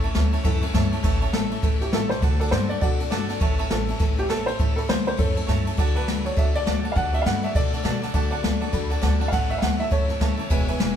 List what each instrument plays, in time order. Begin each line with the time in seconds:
0.02 steel-string acoustic guitar A3 C#4 E4, honky-tonk piano C#5 E5 A5, ride
0.14 upright bass D2, steel-string acoustic guitar E3 A3 C#4 E4, honky-tonk piano C#5 E5 A5, snare, ride
0.32 steel-string acoustic guitar A3 C#4 E4, honky-tonk piano C#5 E5 A5, ride
0.43 upright bass F#2, steel-string acoustic guitar A2 E3 A3 C#4 E4, honky-tonk piano C#5 E5 F#5 A5, kick, snare, ride
0.61 steel-string acoustic guitar A3 C#4 E4, honky-tonk piano C#5 E5 A5, ride
0.73 upright bass G2, steel-string acoustic guitar E3 A3 C#4 E4, honky-tonk piano C#5 E5 A5, kick, snare, ride
0.91 steel-string acoustic guitar A3 C#4 E4, honky-tonk piano C#5 E5 A5, ride
1.03 upright bass A1, steel-string acoustic guitar A2 E3 A3 C#4 E4, honky-tonk piano C#5 E5 A5, kick, snare, crash
1.20 steel-string acoustic guitar A3 C#4 E4, honky-tonk piano C#5 E5 A5, ride
1.32 upright bass A1, steel-string acoustic guitar E3 A3 C#4 E4, upright piano A4, honky-tonk piano C#5 E5 A5, snare, ride
1.50 steel-string acoustic guitar A3 C#4 E4, honky-tonk piano C#5 E5 A5, ride
1.62 upright bass A1, steel-string acoustic guitar A2 E3 A3 C#4 E4, honky-tonk piano C#5 E5 A5, kick, ride
1.80 steel-string acoustic guitar A3 C#4 E4, upright piano G4, honky-tonk piano C#5 E5 A5, snare, ride
1.92 upright bass A1, steel-string acoustic guitar E3 A3 C#4 E4, upright piano A4, honky-tonk piano C#5 E5 A5, snare, ride
2.09 steel-string acoustic guitar A3 C#4 E4, upright piano C5, honky-tonk piano C#5 E5 B5, snare, ride
2.22 upright bass D2, steel-string acoustic guitar D3 A3 D4 F#4, honky-tonk piano D5 F#5 A5, kick, snare, ride
2.39 steel-string acoustic guitar A3 D4 F#4, upright piano A4, honky-tonk piano D5 F#5 A5, ride
2.51 upright bass G2, steel-string acoustic guitar D3 A3 D4 F#4, upright piano C5, honky-tonk piano D5 F#5, snare, ride
2.69 steel-string acoustic guitar A3 D4 F#4, upright piano D5, honky-tonk piano D5 F#5 A5, ride
2.81 upright bass B2, steel-string acoustic guitar D3 A3 D4 F#4, upright piano F#4 D5, honky-tonk piano D5 F#5 A5, kick, ride
2.99 steel-string acoustic guitar A3 D4 F#4, honky-tonk piano D5 F#5 A5, ride
3.10 upright bass G1, steel-string acoustic guitar D3 A3 D4 F#4, honky-tonk piano D5 F#5 A5, snare, ride
3.28 steel-string acoustic guitar A3 D4 F#4, honky-tonk piano D5 F#5 A5, snare, ride
3.40 upright bass A1, steel-string acoustic guitar A2 E3 A3 C#4 E4, honky-tonk piano C#5 E5 A5, kick, ride
3.58 steel-string acoustic guitar A3 C#4 E4, honky-tonk piano C#5 E5 A5, ride
3.69 upright bass A1, steel-string acoustic guitar E3 A3 C#4 E4, upright piano A4, honky-tonk piano C#5 E5 A5, snare, ride
3.87 steel-string acoustic guitar A3 C#4 E4, honky-tonk piano C#5 E5 A5, ride
3.99 upright bass A1, steel-string acoustic guitar A2 E3 A3 C#4 E4, honky-tonk piano C#5 E5 A5, kick, snare, ride
4.16 steel-string acoustic guitar A3 C#4 E4, upright piano G4, honky-tonk piano C#5 E5 A5, ride
4.29 upright bass A1, steel-string acoustic guitar E3 A3 C#4 E4, upright piano A4, honky-tonk piano C#5 E5 A5, snare, ride
4.46 steel-string acoustic guitar A3 C#4 E4, upright piano C5, honky-tonk piano C#5 E5, ride
4.59 upright bass A1, steel-string acoustic guitar A2 E3 A3 C#4 E4, honky-tonk piano C#5 E5 A5, kick, ride
4.76 steel-string acoustic guitar A3 C#4 E4, upright piano A4, honky-tonk piano C#5 E5 B5, ride
4.88 upright bass D2, steel-string acoustic guitar E3 A3 C#4 E4, upright piano C5, honky-tonk piano C#5 E5 A5, snare, ride
5.06 steel-string acoustic guitar A3 C#4 E4, upright piano C5, honky-tonk piano C#5 E5 A5, ride
5.17 upright bass F#2, steel-string acoustic guitar A2 E3 A3 C#4 E4, upright piano C#4 A4, honky-tonk piano C#5 E5 A5, kick, snare, ride
5.35 steel-string acoustic guitar A3 C#4 E4, honky-tonk piano C#5 E5 A5, ride
5.47 upright bass G2, steel-string acoustic guitar E3 A3 C#4 E4, honky-tonk piano C#5 E5 A5, kick, snare, ride
5.65 steel-string acoustic guitar A3 C#4 E4, honky-tonk piano C#5 E5 A5, ride
5.77 upright bass D2, steel-string acoustic guitar D3 A3 D4 F#4, honky-tonk piano D5 F#5 A5, kick, ride
5.95 steel-string acoustic guitar A3 D4 F#4, upright piano B4, honky-tonk piano D5 F#5 A5, ride
6.07 upright bass D2, steel-string acoustic guitar D3 A3 D4 F#4, honky-tonk piano D5 F#5 B5, snare, ride
6.24 steel-string acoustic guitar A3 D4 F#4, upright piano C#5, honky-tonk piano D5 F#5 A5, ride
6.37 upright bass D2, steel-string acoustic guitar D3 A3 D4 F#4, honky-tonk piano D5 F#5 A5, upright piano E5, kick, snare, ride
6.54 steel-string acoustic guitar A3 D4 F#4, honky-tonk piano D5 F#5 A5, upright piano D5, ride
6.66 upright bass D2, steel-string acoustic guitar D3 A3 D4 F#4, honky-tonk piano D5 F#5 A5, snare, ride
6.83 steel-string acoustic guitar A3 D4 F#4, honky-tonk piano D5 F#5 A5, ride
6.92 steel-string acoustic guitar D3, honky-tonk piano D5 F#5, upright piano F5
6.96 upright bass D2, steel-string acoustic guitar A3 D4 F#4, upright piano F#5, honky-tonk piano A5, kick, ride
7.13 steel-string acoustic guitar A3 D4 F#4, honky-tonk piano D5 F#5 A5, upright piano E5, ride
7.22 upright bass G2, steel-string acoustic guitar D3, honky-tonk piano D5, upright piano F5
7.26 steel-string acoustic guitar A3 D4 F#4, upright piano F#5, honky-tonk piano B5, snare, ride
7.43 steel-string acoustic guitar A3 D4 F#4, honky-tonk piano D5 F#5 A5, upright piano E5, ride
7.55 upright bass B2, steel-string acoustic guitar D3 A3 D4 F#4, honky-tonk piano D5 F#5 A5, upright piano D5, kick, snare, ride
7.72 steel-string acoustic guitar A3 D4 F#4, honky-tonk piano D5 F#5 A5, snare, ride
7.84 upright bass B2, steel-string acoustic guitar D3 A3 D4 F#4, honky-tonk piano D5 F#5 A5, snare, ride
8.02 steel-string acoustic guitar A3 D4 F#4, honky-tonk piano D5 F#5 A5, snare, ride
8.14 upright bass D2, steel-string acoustic guitar D3 A3 D4 F#4, honky-tonk piano D5 F#5 A5, kick, ride
8.31 steel-string acoustic guitar A3 D4 F#4, honky-tonk piano D5 F#5 A5, ride
8.42 upright bass D2, steel-string acoustic guitar D3 A3 D4 F#4, honky-tonk piano D5 F#5 A5, snare, ride
8.60 steel-string acoustic guitar A3 D4 F#4, honky-tonk piano D5 F#5 A5, ride
8.72 upright bass D2, steel-string acoustic guitar D3 A3 D4 F#4, honky-tonk piano D5 F#5 B5, kick, ride
8.90 steel-string acoustic guitar A3 D4 F#4, honky-tonk piano D5 F#5 A5, ride
9.02 upright bass D2, steel-string acoustic guitar D3 A3 D4 F#4, honky-tonk piano D5 F#5 A5, snare, ride
9.20 steel-string acoustic guitar A3 D4 F#4, honky-tonk piano D5 F#5 A5, ride
9.28 steel-string acoustic guitar A2 E3, honky-tonk piano C#5, upright piano F5
9.32 upright bass A1, steel-string acoustic guitar A3 C#4 E4, honky-tonk piano E5 A5, upright piano F#5, kick, snare, ride
9.49 steel-string acoustic guitar A3 C#4 E4, honky-tonk piano C#5 E5 F#5, upright piano E5, ride
9.58 upright bass D2, steel-string acoustic guitar E3 A3, honky-tonk piano C#5 E5, upright piano F5
9.62 steel-string acoustic guitar C#4 E4, upright piano F#5, honky-tonk piano A5, snare, ride
9.78 steel-string acoustic guitar A3 C#4 E4, honky-tonk piano C#5 E5 A5, upright piano E5, ride
9.91 upright bass F#2, steel-string acoustic guitar A2 E3 A3 C#4 E4, honky-tonk piano C#5 E5 A5, upright piano C#5, kick, ride
10.08 steel-string acoustic guitar A3 C#4 E4, honky-tonk piano C#5 E5 A5, snare, ride
10.20 upright bass D2, steel-string acoustic guitar E3 A3 C#4 E4, honky-tonk piano C#5 E5 A5, kick, snare, ride
10.37 steel-string acoustic guitar A3 C#4 E4, honky-tonk piano C#5 E5 A5, ride
10.50 upright bass E1, steel-string acoustic guitar E2 B2 E3 G#3 B3 E4, honky-tonk piano B4 E5 G#5, kick, snare, ride
10.67 steel-string acoustic guitar E3 G#3 B3 E4, honky-tonk piano B4 E5 G#5, ride
10.79 upright bass E1, steel-string acoustic guitar E3 G#3 B3 E4, honky-tonk piano B4 E5 G#5, snare, ride